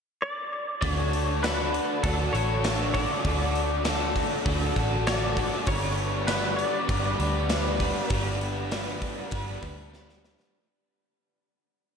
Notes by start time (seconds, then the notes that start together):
0.22 D5
0.81 D2 D3 D4 F#4 A4 D5, kick, open hi-hat
0.92 C#5
1.13 open hi-hat
1.42 D3 D4 F#4 A4 B4, snare, open hi-hat
1.74 open hi-hat
2.02 D2 D3 D4 F#4 A4, kick, open hi-hat
2.33 A1 D4 F#4 A4 C#5, open hi-hat
2.62 D3 D4 F#4 A4, snare, open hi-hat
2.93 D4 F#4 A4 D5, kick, open hi-hat
3.24 D2 D3 D4 F#4 A4, kick, open hi-hat
3.55 open hi-hat
3.84 D3 D4 F#4 A4, snare, open hi-hat
4.16 kick, open hi-hat
4.33 C#5
4.44 D2 D3 D4 F#4 A4, kick, open hi-hat
4.75 A1 D4 F#4 A4, kick, open hi-hat
5.06 D3 D4 F#4 A4 D5, snare, open hi-hat
5.37 D4 F#4 A4, kick, open hi-hat
5.66 G1 G3 B3 D4 B4 C#5, kick, open hi-hat
5.97 open hi-hat
6.27 G3 B3 D4 B4, snare, open hi-hat
6.56 D5, open hi-hat
6.88 G1 G3 B3 D4 B4, kick, open hi-hat
7.18 D2 B3 D4 B4, open hi-hat
7.49 G3 B3 D4 B4, snare, open hi-hat
7.79 B3 D4 B4, kick, open hi-hat
8.09 G1 G3 B3 D4 B4, kick, open hi-hat
8.41 open hi-hat
8.71 G3 B3 D4 B4, snare, open hi-hat
9.02 kick, open hi-hat
9.31 G1 G3 B3 D4 B4, kick, open hi-hat
9.62 D2 B3 D4 B4, kick, open hi-hat
9.92 G3 B3 D4 B4, snare
10.09 snare
10.24 B3 D4 B4, snare
10.40 snare